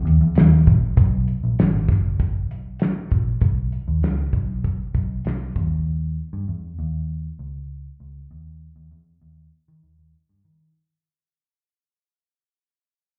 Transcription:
0.05 D#2, closed hi-hat
0.21 E2
0.35 D#2, snare, closed hi-hat
0.66 A#1, kick, closed hi-hat
0.97 B1, kick, closed hi-hat
1.28 closed hi-hat
1.44 A#1
1.59 G#1, snare, closed hi-hat
1.89 F#1, kick, snare, closed hi-hat
2.20 kick, closed hi-hat
2.51 B1, closed hi-hat
2.79 snare, closed hi-hat
3.11 A#1, kick, closed hi-hat
3.41 B1, kick, closed hi-hat
3.72 closed hi-hat
3.88 D#2
4.03 C#2, snare, closed hi-hat
4.33 B1, kick, closed hi-hat
4.64 kick, closed hi-hat
4.95 B1, kick, closed hi-hat
5.25 B1, snare, closed hi-hat
5.56 D#2, kick, closed hi-hat
6.33 G2
6.48 E2
6.79 D#2
7.39 C#2
8.00 C#2
8.31 D#2
8.76 D#2
8.91 E2
9.21 D#2
9.68 D#3
9.83 D#2
9.98 D#2
10.13 muted picked electric bass stroke
10.29 G2
10.45 D#3

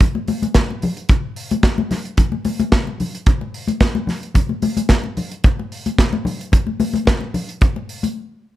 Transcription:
0.00 kick, closed hi-hat, muted conga, low conga
0.15 muted conga, high conga
0.28 open hi-hat, high conga
0.42 closed hi-hat, high conga
0.54 kick, snare, closed hi-hat, muted conga
0.70 muted conga
0.82 open hi-hat, low conga
0.97 closed hi-hat
1.09 kick, closed hi-hat, muted conga
1.36 open hi-hat
1.51 closed hi-hat, high conga
1.63 kick, snare, closed hi-hat
1.78 muted conga, high conga
1.91 snare, open hi-hat, low conga
2.05 closed hi-hat
2.17 kick, closed hi-hat, muted conga, low conga
2.32 muted conga, high conga
2.45 open hi-hat, high conga
2.60 closed hi-hat, high conga
2.72 kick, snare, closed hi-hat, muted conga
2.87 muted conga
3.00 open hi-hat, low conga
3.15 closed hi-hat
3.26 kick, closed hi-hat, muted conga
3.41 muted conga
3.54 open hi-hat
3.68 closed hi-hat, high conga
3.80 kick, snare, closed hi-hat, muted conga
3.95 muted conga, high conga
4.07 snare, open hi-hat, low conga
4.23 closed hi-hat
4.34 kick, closed hi-hat, low conga
4.49 muted conga, high conga
4.62 open hi-hat, high conga
4.77 closed hi-hat, high conga
4.89 kick, snare, closed hi-hat
5.04 muted conga
5.17 open hi-hat, low conga
5.32 closed hi-hat
5.44 kick, closed hi-hat, muted conga
5.59 muted conga
5.72 open hi-hat
5.86 closed hi-hat, high conga
5.98 kick, snare, closed hi-hat
6.13 high conga
6.25 open hi-hat, low conga
6.41 closed hi-hat
6.52 kick, closed hi-hat, muted conga, low conga
6.67 muted conga, high conga
6.80 open hi-hat, high conga
6.93 closed hi-hat, high conga
7.05 kick, snare, closed hi-hat, muted conga
7.21 muted conga
7.34 open hi-hat, low conga
7.49 closed hi-hat
7.61 kick, closed hi-hat, muted conga
7.76 muted conga
7.89 open hi-hat
8.03 closed hi-hat, high conga

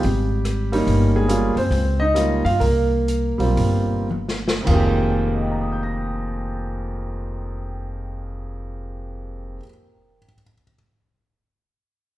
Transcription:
Already playing: G3 G4
0.03 G#1, open hi-hat
0.45 cross-stick, closed hi-hat
0.72 G3 A#3 C#4 D#4, open hi-hat
0.87 G1, open hi-hat
1.16 G#3 G#4
1.28 G3 A#3 C#4 F4, closed hi-hat
1.56 F#1 C4 C5, open hi-hat
1.71 C#2, open hi-hat
2.00 D#4 D#5
2.14 G3 A#3 C#4 F4, cross-stick, closed hi-hat
2.45 G2 F4 F5, open hi-hat
2.60 C2 A#3 A#4, open hi-hat
3.08 closed hi-hat
3.38 B1 G3 A#3 C4 F4, open hi-hat
3.57 G1, open hi-hat
4.11 mid tom
4.29 snare
4.48 snare
4.61 F2 D#3
4.66 F1 G#3 A#3 F4, kick, crash
4.73 G4
5.27 A#4
5.34 D#5
5.42 G5
5.52 A#5
5.61 D#6
5.72 G6
5.83 A#6

